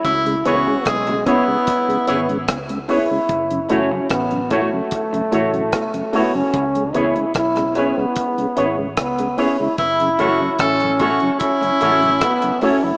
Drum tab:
HH |xxx-xxx-xxxxxxo-|xxx-xxx-xxxxxxo-|xxxxxxx-xxx-xxo-|xxx-xxxxxxxxxxo-|
SD |----r-------r---|----r-------r---|----rr------r---|----r-------r---|
BD |o---o-o-o---o---|o---o-o-o---o---|o---o---o---o---|o---o-o-o---o---|